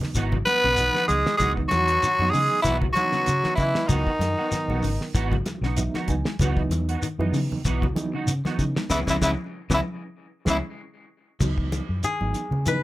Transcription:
Already playing: E3 F#3 B3 D#4
0.01 snare, low conga
0.15 G#1 E3 B3 D#4 F#4, kick, closed hi-hat, shekere
0.32 F#3, kick, low conga
0.46 B3 B4, closed hi-hat, high conga, shekere
0.64 B1 C#3 B3 D#4 F#4
0.77 E3 F#3 B3 D#4, closed hi-hat, shekere
0.94 D#3 B3 D#4 F#4, snare, high conga
1.07 C#2 E3 F#3 G#3 B3 D#4 G#4, closed hi-hat, high conga, shekere
1.26 G#3, snare
1.38 C#2 E3 F#3 G#3 B3 D#4 F#4 G#4, kick, closed hi-hat, low conga, shekere
1.42 D#4
1.56 E3 F#3 B3 D#4, kick
1.68 E2 F#3 F#4, snare, closed hi-hat, high conga, shekere
1.73 E3
1.88 B3 D#4 F#4, closed hi-hat
2.02 D#3, closed hi-hat, shekere
2.19 F#2 E3 F#3 B3 D#4 F#4, high conga
2.30 C#3 G#3 G#4, open hi-hat
2.34 C#3, shekere
2.62 B1 E3 B3 D#4 E4 F#4, kick, closed hi-hat, shekere
2.82 F#3, kick, low conga
2.93 E3 F#3 F#4, closed hi-hat, high conga, shekere
2.98 B3 D#4
3.12 C#3 B3 F#4, snare
3.26 C#3, closed hi-hat, shekere
3.44 D#3 B3 D#4 F#4, snare, high conga
3.55 C#3 E3 F#3 B3 E4, kick, closed hi-hat, shekere
3.59 D#5
3.75 G#3, snare
3.88 C#2 D#3 E3 F#3 B3 D#4 F#4, kick, closed hi-hat, low conga, shekere
4.07 kick
4.19 F#2 D#3, snare, closed hi-hat, high conga, shekere
4.38 B3 D#4 F#4
4.51 D#3 F#3 B3 D#4, muted fingered electric bass stroke, snare, closed hi-hat, shekere
4.68 B1 B3 D#4 F#4, high conga
4.83 G#1 C#3, open hi-hat, shekere
5.01 snare
5.14 G#1 E3 B3 D#4 F#4, kick, closed hi-hat, shekere
5.32 F#3, kick, low conga
5.46 snare, closed hi-hat, high conga, shekere
5.61 B1 C#3 B3 D#4 F#4, snare
5.76 E3 F#3 B3 D#4 E5, closed hi-hat, shekere
5.94 D#3 B3 D#4 F#4 F#5, snare, high conga
6.08 C#2 E3 F#3 B3 D#4 G#5, kick, closed hi-hat, high conga, shekere
6.25 G#3, snare
6.39 C#2 E3 F#3 B3 D#4 F#4, kick, closed hi-hat, low conga, shekere
6.56 E3 F#3 B3 D#4, kick
6.69 E2 E3, closed hi-hat, high conga, shekere
6.89 B3 D#4 F#4, closed hi-hat
7.02 D#3, closed hi-hat, shekere
7.19 F#2 E3 F#3 B3 D#4, muted clean electric guitar stroke, high conga
7.32 C#3, open hi-hat, shekere
7.52 low conga
7.65 B1 E3 B3 D#4 F#4, kick, closed hi-hat, shekere
7.82 F#3, kick, low conga
7.95 E3 F#3 B3 D#4, closed hi-hat, high conga, shekere
8.13 C#3 B3 D#4 F#4
8.27 C#3, closed hi-hat, shekere
8.45 D#3 B3 D#4 F#4, snare, high conga
8.57 C#3 E3 F#3 B3 D#4, kick, closed hi-hat, shekere
8.76 G#3, snare
8.90 C#2 C#3 E3 G#3 B3 C#4 E4, kick, snare, high conga, shekere
9.07 C#2 C#3 E3 G#3 B3 C#4 E4, kick, snare, high conga, shekere
9.22 C#2 C#3 E3 G#3 B3 C#4 E4, kick, snare, high conga, shekere
9.70 C#2 C#3 E3 G#3 B3 C#4 E4, kick, snare, high conga, shekere
9.74 E4
10.45 C#2 C#3 E3 G#3 B3 C#4 E4, kick, snare, high conga, shekere
10.50 E4
11.40 C#2 E3 F#3 B3 D#4, kick, snare, crash, low conga, shekere
11.58 kick
11.72 E3, closed hi-hat, high conga, shekere
11.89 F#2
12.03 D#3 G#4, closed hi-hat, shekere
12.21 G#1 E3 F#3 B3 D#4, high conga
12.34 muted fingered electric bass stroke, muted clean electric guitar stroke, closed hi-hat, shekere
12.51 C#3, low conga
12.66 E3 F#3 B3 D#4 B4, closed hi-hat, high conga, shekere

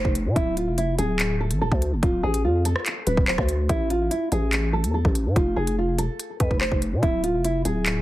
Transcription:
Already playing: C5
0.05 F1, kick
0.15 closed hi-hat
0.26 C3
0.36 D1 E4, kick, closed hi-hat
0.57 F4, closed hi-hat
0.67 F1
0.78 E4, closed hi-hat
0.98 D1 G#4, closed hi-hat
1.19 clap, closed hi-hat
1.40 A4
1.51 A1, closed hi-hat
1.61 D1 A4
1.72 D2, kick
1.82 closed hi-hat
1.92 F1
2.03 D1 F4, kick, closed hi-hat
2.23 A1 G#4
2.34 closed hi-hat
2.44 F2 F4
2.65 A4, closed hi-hat
2.76 cross-stick
2.86 clap, closed hi-hat
3.07 D1 B4, closed hi-hat
3.17 D1, kick
3.28 C5, clap
3.38 D2, kick, cross-stick
3.49 closed hi-hat
3.69 A1 E4, kick, closed hi-hat
3.90 F4, closed hi-hat
4.11 E4, closed hi-hat
4.32 A1 G#4, closed hi-hat
4.53 clap, closed hi-hat
4.73 A4
4.84 E2, closed hi-hat
4.94 A4
5.05 A1, kick
5.15 closed hi-hat
5.26 A2
5.36 F1 F4, kick, closed hi-hat
5.56 F1 G#4
5.67 closed hi-hat
5.78 F4
5.98 E1 A4, closed hi-hat
6.19 closed hi-hat
6.40 F2 B4, kick, closed hi-hat
6.51 F1, kick
6.61 C5, clap
6.72 F1, kick
6.82 closed hi-hat
6.92 C3
7.03 D1 E4, kick, closed hi-hat
7.23 F4, closed hi-hat
7.34 F1
7.45 E4, closed hi-hat
7.65 D1 G#4, closed hi-hat
7.86 clap, closed hi-hat

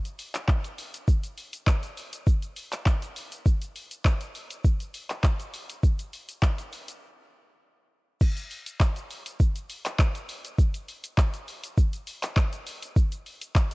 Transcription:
0.05 closed hi-hat, shaker
0.19 open hi-hat, shaker
0.35 clap, closed hi-hat, shaker
0.48 kick, clap, shaker
0.65 closed hi-hat, shaker
0.78 open hi-hat, shaker
0.94 closed hi-hat, shaker
1.08 kick, shaker
1.24 closed hi-hat, shaker
1.38 open hi-hat, shaker
1.53 closed hi-hat, shaker
1.67 kick, clap, shaker
1.83 closed hi-hat, shaker
1.97 open hi-hat, shaker
2.13 closed hi-hat, shaker
2.27 kick, shaker
2.42 closed hi-hat, shaker
2.56 open hi-hat, shaker
2.72 clap, closed hi-hat, shaker
2.86 kick, clap, shaker
3.02 closed hi-hat, shaker
3.16 open hi-hat, shaker
3.32 closed hi-hat, shaker
3.46 kick, shaker
3.61 closed hi-hat, shaker
3.76 open hi-hat, shaker
3.91 closed hi-hat, shaker
4.05 kick, clap, shaker
4.21 closed hi-hat, shaker
4.35 open hi-hat, shaker
4.50 closed hi-hat, shaker
4.64 kick, shaker
4.80 closed hi-hat, shaker
4.94 open hi-hat, shaker
5.10 clap, closed hi-hat, shaker
5.24 kick, clap, shaker
5.40 closed hi-hat, shaker
5.54 open hi-hat, shaker
5.69 closed hi-hat, shaker
5.83 kick, shaker
5.99 closed hi-hat, shaker
6.13 open hi-hat, shaker
6.29 closed hi-hat, shaker
6.43 kick, clap, shaker
6.58 closed hi-hat, shaker
6.72 open hi-hat, shaker
6.88 closed hi-hat, shaker
8.21 kick, crash, shaker
8.37 closed hi-hat, shaker
8.51 open hi-hat, shaker
8.66 closed hi-hat, shaker
8.80 kick, clap, shaker
8.96 closed hi-hat, shaker
9.10 open hi-hat, shaker
9.26 closed hi-hat, shaker
9.40 kick, shaker
9.56 closed hi-hat, shaker
9.69 open hi-hat, shaker
9.85 clap, closed hi-hat, shaker
9.99 kick, clap, shaker
10.15 closed hi-hat, shaker
10.29 open hi-hat, shaker
10.45 closed hi-hat, shaker
10.59 kick, shaker
10.74 closed hi-hat, shaker
10.88 open hi-hat, shaker
11.04 closed hi-hat, shaker
11.18 kick, clap, shaker
11.34 closed hi-hat, shaker
11.48 open hi-hat, shaker
11.63 closed hi-hat, shaker
11.77 kick, shaker
11.93 closed hi-hat, shaker
12.07 open hi-hat, shaker
12.23 clap, closed hi-hat, shaker
12.37 kick, clap, shaker
12.53 closed hi-hat, shaker
12.67 open hi-hat, shaker
12.82 closed hi-hat, shaker
12.96 kick, shaker
13.12 closed hi-hat, shaker
13.26 open hi-hat, shaker
13.42 closed hi-hat, shaker
13.56 kick, clap, shaker

